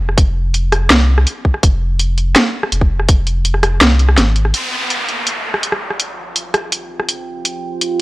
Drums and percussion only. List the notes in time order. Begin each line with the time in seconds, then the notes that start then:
0.09 cross-stick
0.18 kick, closed hi-hat
0.54 closed hi-hat
0.72 cross-stick, closed hi-hat
0.90 snare, closed hi-hat
1.18 cross-stick
1.27 closed hi-hat
1.45 kick
1.54 cross-stick
1.63 kick, closed hi-hat
2.00 closed hi-hat
2.18 closed hi-hat
2.36 snare, closed hi-hat
2.63 cross-stick
2.72 closed hi-hat
2.81 kick
3.00 cross-stick
3.09 kick, closed hi-hat
3.27 closed hi-hat
3.45 closed hi-hat
3.54 cross-stick
3.63 cross-stick, closed hi-hat
3.81 snare, closed hi-hat
3.99 closed hi-hat
4.09 cross-stick
4.18 snare, closed hi-hat
4.36 closed hi-hat
4.45 cross-stick
4.54 closed hi-hat
4.90 closed hi-hat
5.09 closed hi-hat
5.27 closed hi-hat
5.54 cross-stick
5.63 closed hi-hat
5.72 cross-stick
5.90 cross-stick
6.00 closed hi-hat
6.36 closed hi-hat
6.54 cross-stick, closed hi-hat
6.72 closed hi-hat
7.00 cross-stick
7.09 closed hi-hat
7.45 closed hi-hat
7.81 closed hi-hat